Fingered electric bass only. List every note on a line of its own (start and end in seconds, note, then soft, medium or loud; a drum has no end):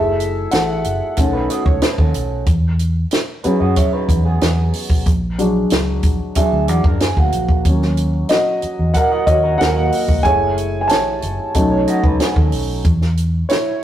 0.00 0.45 F#1 loud
0.53 0.81 A1 medium
0.85 1.00 F#1 medium
1.18 1.46 B1 medium
1.66 1.80 C#2 medium
1.98 2.13 D#2 medium
2.15 2.43 B1 medium
2.47 3.04 E2 medium
3.45 muted fingered electric bass stroke soft
3.61 3.75 F#2 medium
4.09 4.37 E2 medium
4.42 4.70 E2 medium
4.90 5.04 B1 medium
5.06 5.63 A#1 medium
5.72 6.00 C#2 medium
6.04 6.18 A#1 medium
6.52 6.69 D2 medium
6.69 6.83 E2 medium
6.84 7.13 F#2 medium
7.17 7.31 D2 medium
7.33 7.62 A#1 medium
7.65 8.23 D#2 medium
8.63 muted fingered electric bass stroke soft
8.79 8.93 E2 medium
9.27 9.56 D#2 medium
9.61 9.89 D#2 medium
10.09 10.23 C#2 medium
10.25 10.90 F#1 medium
10.90 11.19 A1 medium
11.23 11.37 F#1 medium
11.55 11.84 B1 loud
12.04 12.18 C#2 medium
12.36 12.51 D#2 medium
12.53 12.82 B1 medium
12.85 13.42 E2 loud